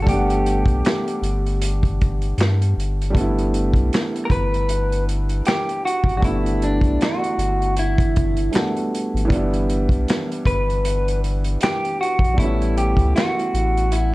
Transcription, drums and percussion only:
0.07 kick, closed hi-hat
0.30 closed hi-hat
0.46 closed hi-hat
0.66 kick, closed hi-hat
0.85 snare, clap, closed hi-hat
1.08 closed hi-hat
1.23 closed hi-hat
1.46 closed hi-hat
1.62 closed hi-hat
1.83 kick, closed hi-hat
2.01 kick, closed hi-hat
2.22 closed hi-hat
2.38 snare, clap, closed hi-hat
2.62 closed hi-hat
2.80 closed hi-hat
3.01 closed hi-hat
3.15 kick, closed hi-hat
3.38 closed hi-hat
3.54 closed hi-hat
3.73 kick, closed hi-hat
3.93 snare, clap, closed hi-hat
4.16 closed hi-hat
4.30 kick, closed hi-hat
4.54 closed hi-hat
4.69 closed hi-hat
4.92 closed hi-hat
5.09 closed hi-hat
5.29 closed hi-hat
5.45 snare, clap, closed hi-hat
5.69 closed hi-hat
5.87 closed hi-hat
6.04 kick
6.09 closed hi-hat
6.22 kick, closed hi-hat
6.46 closed hi-hat
6.62 closed hi-hat
6.81 kick, closed hi-hat
7.01 snare, clap, closed hi-hat
7.24 closed hi-hat
7.39 closed hi-hat
7.62 closed hi-hat
7.76 closed hi-hat
7.98 kick, closed hi-hat
8.16 kick, closed hi-hat
8.37 closed hi-hat
8.53 snare, clap, closed hi-hat
8.77 closed hi-hat
8.95 closed hi-hat
9.17 closed hi-hat
9.30 kick, closed hi-hat
9.53 closed hi-hat
9.69 closed hi-hat
9.89 kick, closed hi-hat
10.08 snare, clap, closed hi-hat
10.32 closed hi-hat
10.45 kick, closed hi-hat
10.70 closed hi-hat
10.85 closed hi-hat
11.08 closed hi-hat
11.24 closed hi-hat
11.44 closed hi-hat
11.61 snare, clap, closed hi-hat
11.85 closed hi-hat
12.03 closed hi-hat
12.19 kick
12.24 closed hi-hat
12.38 kick, closed hi-hat
12.62 closed hi-hat
12.77 closed hi-hat
12.97 kick, closed hi-hat
13.16 snare, clap, closed hi-hat
13.39 closed hi-hat
13.55 closed hi-hat
13.77 closed hi-hat
13.92 closed hi-hat

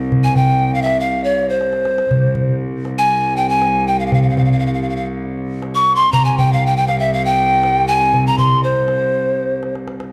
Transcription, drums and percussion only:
0.12 darbuka dum
0.23 darbuka ka
0.36 darbuka dum
0.49 darbuka ka
0.86 darbuka tek
1.25 darbuka ka
1.37 darbuka ka
1.48 darbuka ka
1.61 darbuka tek
1.73 darbuka ka
1.85 darbuka tek
1.98 darbuka ka
2.11 darbuka dum
2.23 darbuka ka
2.35 darbuka dum
2.61 darbuka ka
2.85 darbuka tek
3.37 darbuka ka
3.62 darbuka tek
4.12 darbuka dum
4.25 darbuka ka
4.37 darbuka dum
4.63 darbuka ka
5.38 darbuka ka
5.62 darbuka tek
6.13 darbuka dum
6.26 darbuka ka
6.38 darbuka dum
6.63 darbuka ka
6.88 darbuka tek
7.63 darbuka tek
8.14 darbuka dum
8.26 darbuka ka
8.38 darbuka dum
8.51 darbuka ka
8.63 darbuka ka
8.88 darbuka tek
9.26 darbuka ka
9.38 darbuka ka
9.50 darbuka ka
9.63 darbuka tek
9.75 darbuka ka
9.88 darbuka tek
10.00 darbuka ka

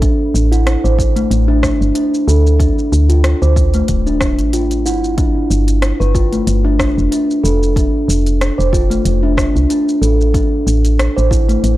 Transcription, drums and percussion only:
0.02 kick, closed hi-hat, shaker
0.35 shaker
0.53 closed hi-hat, shaker
0.67 cross-stick, closed hi-hat, shaker
0.85 shaker
0.99 kick, shaker
1.16 closed hi-hat, shaker
1.31 closed hi-hat, shaker
1.63 kick, cross-stick, shaker
1.82 shaker
1.95 closed hi-hat, shaker
2.14 shaker
2.29 shaker
2.47 shaker
2.60 kick, closed hi-hat, shaker
2.79 shaker
2.93 shaker
3.10 closed hi-hat, shaker
3.24 cross-stick, closed hi-hat, shaker
3.43 shaker
3.56 kick, shaker
3.74 closed hi-hat, shaker
3.88 kick, closed hi-hat, shaker
4.07 shaker
4.21 kick, cross-stick, shaker
4.39 closed hi-hat, shaker
4.53 closed hi-hat, shaker
4.71 closed hi-hat, shaker
4.86 shaker
5.04 shaker
5.18 kick, closed hi-hat, shaker
5.51 shaker
5.68 closed hi-hat, shaker
5.82 cross-stick, closed hi-hat, shaker
6.01 shaker
6.15 kick, shaker
6.33 closed hi-hat, shaker
6.47 closed hi-hat, shaker
6.79 kick, cross-stick, shaker
6.98 shaker
7.12 closed hi-hat, shaker
7.31 shaker
7.45 shaker
7.63 shaker
7.76 kick, closed hi-hat, shaker
8.10 shaker
8.26 closed hi-hat, shaker
8.41 cross-stick, closed hi-hat, shaker
8.60 shaker
8.73 kick, shaker
8.91 closed hi-hat, shaker
9.05 closed hi-hat, shaker
9.37 kick, cross-stick, shaker
9.56 shaker
9.70 closed hi-hat, shaker
9.89 shaker
10.03 shaker
10.21 shaker
10.34 kick, closed hi-hat, shaker
10.68 shaker
10.85 closed hi-hat, shaker
10.99 cross-stick, closed hi-hat, shaker
11.18 shaker
11.31 kick, shaker
11.49 closed hi-hat, shaker
11.64 closed hi-hat, shaker

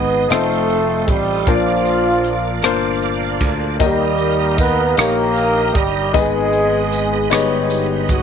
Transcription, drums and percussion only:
0.30 cross-stick, closed hi-hat
0.70 closed hi-hat
1.08 kick, closed hi-hat
1.47 kick, closed hi-hat
1.85 closed hi-hat
2.24 closed hi-hat
2.63 cross-stick, closed hi-hat
3.02 closed hi-hat
3.40 kick, closed hi-hat
3.80 kick, closed hi-hat, tambourine
4.18 closed hi-hat
4.58 kick, closed hi-hat, tambourine
4.97 cross-stick, closed hi-hat, tambourine
5.36 closed hi-hat, tambourine
5.75 kick, closed hi-hat
6.14 kick, closed hi-hat, tambourine
6.53 closed hi-hat
6.92 closed hi-hat, tambourine
7.31 cross-stick, closed hi-hat, tambourine
7.70 closed hi-hat, tambourine
8.09 kick, closed hi-hat

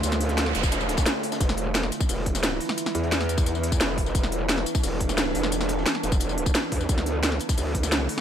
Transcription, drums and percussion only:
0.03 closed hi-hat, tambourine
0.11 snare, closed hi-hat, tambourine
0.21 closed hi-hat
0.29 snare, closed hi-hat
0.37 snare, closed hi-hat, tambourine
0.46 snare
0.55 closed hi-hat, tambourine
0.63 kick, tambourine
0.72 snare, closed hi-hat, tambourine
0.81 tambourine
0.89 snare, closed hi-hat
0.97 kick, snare, closed hi-hat, tambourine
1.06 snare, closed hi-hat, tambourine
1.15 snare
1.23 closed hi-hat, open hi-hat
1.32 snare, closed hi-hat, tambourine
1.41 kick, closed hi-hat, tambourine
1.49 snare, closed hi-hat, tambourine
1.57 closed hi-hat
1.74 snare, closed hi-hat, tambourine
1.83 snare
1.92 closed hi-hat, tambourine
2.00 kick, snare, tambourine
2.09 closed hi-hat, open hi-hat, tambourine
2.26 kick, closed hi-hat
2.35 snare, tambourine
2.43 snare, closed hi-hat, tambourine
2.52 snare
2.60 open hi-hat
2.69 snare, tambourine
2.78 closed hi-hat, tambourine
2.86 snare, closed hi-hat, tambourine
2.95 closed hi-hat
3.03 closed hi-hat
3.12 snare, closed hi-hat, tambourine
3.21 snare, closed hi-hat
3.29 closed hi-hat, tambourine
3.37 kick, closed hi-hat, tambourine
3.46 closed hi-hat, tambourine
3.55 snare, tambourine
3.63 closed hi-hat
3.72 kick, tambourine
3.80 snare, closed hi-hat, tambourine
3.98 kick, closed hi-hat, open hi-hat
4.06 snare, tambourine
4.15 kick, closed hi-hat, tambourine
4.23 snare, closed hi-hat, tambourine
4.32 closed hi-hat
4.49 snare, closed hi-hat, tambourine
4.58 snare
4.66 closed hi-hat, tambourine
4.75 kick, snare, tambourine
4.83 closed hi-hat, open hi-hat, tambourine
5.00 kick, closed hi-hat
5.09 snare, tambourine
5.18 snare, closed hi-hat, tambourine
5.26 snare
5.35 closed hi-hat, open hi-hat
5.43 snare, tambourine
5.52 closed hi-hat, tambourine
5.61 snare, closed hi-hat, tambourine
5.69 closed hi-hat
5.77 snare
5.86 snare, closed hi-hat, tambourine
5.95 snare
6.03 closed hi-hat, tambourine
6.12 kick, closed hi-hat, tambourine
6.20 closed hi-hat, tambourine
6.29 snare, tambourine
6.38 closed hi-hat
6.46 kick, tambourine
6.55 snare, closed hi-hat, tambourine
6.72 kick, closed hi-hat, open hi-hat
6.81 snare, tambourine
6.89 kick, closed hi-hat, tambourine
6.98 snare, closed hi-hat, tambourine
7.06 closed hi-hat
7.23 snare, closed hi-hat, tambourine
7.32 snare
7.39 closed hi-hat, tambourine
7.49 kick, snare, tambourine
7.57 closed hi-hat, open hi-hat, tambourine
7.75 kick, closed hi-hat
7.83 snare, tambourine
7.92 snare, closed hi-hat, tambourine
8.00 snare
8.09 open hi-hat
8.18 snare, tambourine

